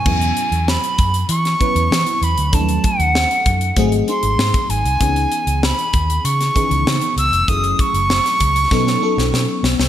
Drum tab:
CC |x---------------|----------------|----------------|----------------|
HH |-xxx-xxxxxxx-xxx|xxxx-xxxxxxx-xxx|xxxx-xxxxxxx-xxx|xxxx-xxx--------|
SD |----o----o--o---|----o-------o---|----o----o--o---|----oo--oo-oo-oo|
BD |o-----o---o-----|o-o---o-o----o--|o-----o---o-----|o-o---o-o-------|